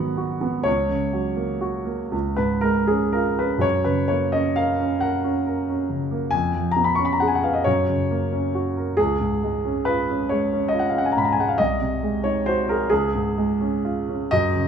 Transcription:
grand piano
Already playing: G#2 D#3 F#3 B3 F#5
0.17 F#4
0.41 B3
0.63 C#2 C#5
0.90 C#3
1.13 F#3
1.36 A#3
1.61 F#4
1.85 A#3
2.11 C#2
2.36 G#2 B4
2.61 G#3 A#4
2.87 C#4 G#4
3.13 F4 A#4
3.39 C#4 B4
3.58 F#2 C#5
3.84 C#3 B4
4.08 A#3 C#5
4.32 C#4 D#5
4.56 A#4 F5
4.80 C#4
5.00 A#4 F#5
5.24 C#4
5.46 A#4
5.69 C#4
5.89 C#3
6.11 A#3
6.31 F2 G#5
6.55 F3
6.71 A#5
6.76 B3
6.84 B5
6.95 C#4 C#6
7.05 B5
7.13 A#5
7.20 G#4 F#5
7.28 G#5
7.35 F#5
7.43 B4 F5
7.53 D#5
7.64 F#2 C#5
7.88 C#3
8.11 A#3
8.33 C#4
8.55 F#4
8.77 A#4
8.97 C#2 G#4
9.21 G#2
9.44 G#3
9.65 C#4
9.85 F4 B4
10.09 C#4
10.29 G#3 C#5
10.53 C#4
10.68 D#5
10.73 F4
10.79 F#5
10.90 F5
10.95 C#4 F#5
11.06 G#5
11.12 A#5
11.17 G#2 B5
11.25 A#5
11.32 G#5
11.39 G#3 F#5
11.49 F5
11.58 C2 D#5
11.81 C3
12.03 G#3
12.24 D#4 C#5
12.46 F#4 C5
12.69 G#4 A#4
12.90 C#2 G#4
13.15 G#2
13.37 G#3
13.61 C#4
13.85 F4
14.09 C#4
14.31 F#2 D#5
14.55 C#3

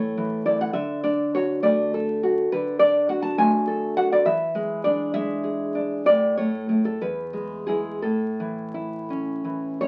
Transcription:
nylon-string guitar
Already playing: A2 E3 A3 E4 C#5
0.17 E3
0.46 E4 D5
0.61 F#5
0.73 D3 E5
1.04 D4 D5
1.35 F#4 C#5
1.63 A3 D5
1.94 A4
2.23 F#4
2.52 D3 B4
2.79 D4 D5
3.09 F#4 F#5
3.22 A5
3.38 A3 G#5
3.67 A4
3.97 F#4 F#5
4.12 D5
4.25 E3 E5
4.55 G#3
4.84 D4 D5
5.14 G#3 E5
5.44 G#4
5.75 D4
6.06 A2 D5
6.37 A3 C#5
6.69 A3 E4
6.85 A4
7.01 E2 B4
7.33 G#3
7.67 G#3 E4 G#4
8.02 A2 A4
8.40 E3
8.74 E4
9.10 C#4
9.45 E3
9.81 E4 C#5

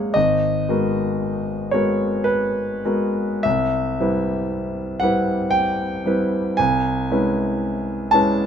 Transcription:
grand piano
Already playing: G#3 A#3 G#4 C#5 F5 F#5
0.14 G#1 D#5
0.69 G#3 B3 F#4 A#4
1.71 G#3 B3 F#4 A#4 C#5
2.24 B4
2.85 G#3 B3 F#4 A#4
3.43 C2 E5
4.00 G3 C4 E4 B4
5.00 G3 C4 E4 B4 F#5
5.51 G5
6.06 G3 C4 E4 B4
6.57 C2 G#5
7.11 G#3 C#4 E4 B4
8.11 G#3 C#4 E4 B4 A5

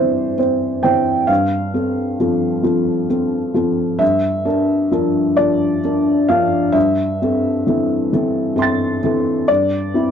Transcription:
felt piano
Already playing: G2 E3 C4 C5 D5
0.38 C4 C5
0.83 E3 C4 C5 G5
1.27 G2 F5
1.74 C4 A4
2.20 F3 C4 A4
2.63 F3 C4 A4
3.09 C4 A4
3.54 F3 C4 A4
3.99 G2 E5
4.45 D4 A#4
4.91 F3 D4 A#4
5.37 F3 D4 A#4 D5
5.84 D4 A#4
6.29 F3 D4 A#4 F5
6.72 G2 E5
7.22 C4 A4
7.67 E3 C4 A4
8.13 E3 C4 A4
8.56 C4 A4 E5 C6
8.62 A6
9.03 E3 C4 A4
9.48 G2 D5
9.94 C4 E4

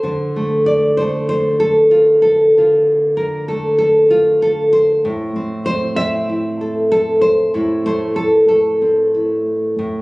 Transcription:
nylon-string guitar
0.03 D3 C5
0.36 A3
0.66 D5
0.97 A3 C5
1.29 C5
1.60 A4
1.91 F4
2.22 A4
2.58 D3 F4
3.17 A#4
3.48 A3 A4
3.78 A4
4.11 F4
4.42 A4
4.73 C5
5.05 A2
5.36 C4
5.66 C5
5.96 C4 E5
6.29 E4
6.61 A4
6.92 A4
7.21 C5
7.54 A2 E4
7.86 A3 C5
8.16 A4
8.48 A3 A4
8.81 C4
9.14 E4
9.79 A2

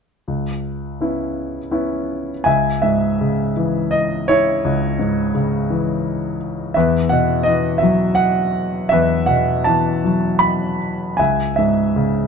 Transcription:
grand piano
0.28 C#2
1.00 B3 C#4 E4
1.71 B3 C#4 E4
2.44 C#2 E5 G#5
2.82 G#2 E5
3.21 C#3
3.57 E3
3.91 D#5
4.28 E4 C#5
4.64 C#2
4.99 G#2
5.35 C#3
5.70 E3
6.74 E2 B4 E5
7.09 B2 F#5
7.43 D#5
7.48 E3
7.78 E5
7.82 F#3
8.15 F#5
8.89 E2 B4 E5
9.26 B2 F#5
9.64 E3 A5
10.04 F#3
10.39 B5
11.17 C#2 E5 G#5
11.56 G#2 E5
11.96 C#3

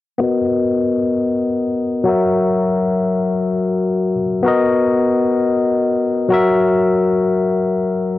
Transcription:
tine electric piano
0.18 B3 F#4 A#4
2.04 F#3 F#4 A#4
2.09 E5
4.43 B3 F#4 A#4
4.48 D#5
6.29 F#3 F#4 A#4
6.34 E5

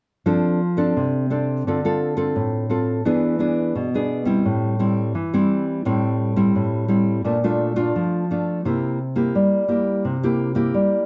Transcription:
nylon-string guitar
0.26 F3 C4 D4 A4
0.77 C4 D4 A4
0.97 C3
1.30 C4 D4 A4
1.67 D3 C4 F4 A4
1.85 C4 F4 A4
2.17 C4 F4 A4
2.36 A2
2.69 C4 F4 A4
3.05 E3 B3 D4 G#4
3.39 B3 D4 G#4
3.75 B2
3.94 B3 D4 G#4
4.25 G3 C4 E4
4.45 A2
4.79 G3 C4 E4
5.15 E3
5.33 G3 C4 E4
5.85 A2 G3 C4 E4
6.36 G3 C4 E4
6.56 A2
6.88 G3 C4 E4
7.25 A#2 A3 D4 F4
7.44 A3 D4 F4
7.76 A3 D4 F4
7.96 F3
8.31 A3 D4 F4
8.65 C3 A#3 E4 G4
9.16 A#3 E4 G4
9.35 G3
9.68 A#3 E4 G4
10.05 C3
10.23 A#3 E4 G4
10.55 A#3 E4 G4
10.74 G3

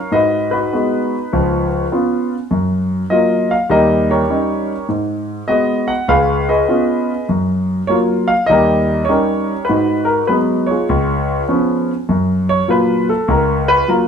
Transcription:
grand piano
Already playing: F5
0.12 G#2 F#4 B4 D#5
0.51 D#4 F#4 B4
0.73 G#3 B3 F#4
1.33 C#2 F3
1.92 B3 C#4 F4
2.51 F#2
3.10 F#3 A#3 F4 D#5
3.51 F5
3.70 D#2 G3 G4 A#4 D#5
4.10 G4 A#4 C#5
4.30 G3 C#4 D#4
4.89 G#2
5.48 G#3 B3 F#4 D#5
5.88 F#5
6.08 C#2 G#4 B4 F5
6.49 G#4 B4 D#5
6.68 B3 C#4 F4
7.29 F#2
7.87 F#3 A#3 F4 C#5
8.28 F5
8.46 D#2 G3 G4 A#4 D#5
9.05 G4 C#5
9.09 G3 C#4 D#4 A#4
9.65 B4
9.69 G#2 D#4 F#4
10.05 A#4
10.27 F#3 G#3 B3 B4
10.67 C#5
10.71 F4 G#4
10.89 C#2
11.48 F3 B3 C#4
12.09 F#2
12.49 C#5
12.68 A#2 F#3 F4 B4
13.09 A4
13.28 C#2 A#4
13.68 B4
13.88 F#3 A#3 F4 A#4

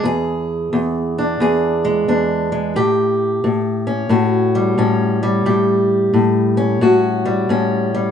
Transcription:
steel-string acoustic guitar
0.04 E2 G#4
0.73 E2
1.18 D4
1.40 E2 G#4
1.85 G#3
2.08 E2 D4
2.52 G#3
2.76 A2 G4
3.44 A2
3.87 C#4
4.09 A2 F#4
4.55 G3
4.78 A2 C#4
5.23 G3
5.46 A2 G4
6.14 A2
6.57 C#4
6.81 A2 F#4
7.26 G3
7.49 A2 C#4
7.94 G3

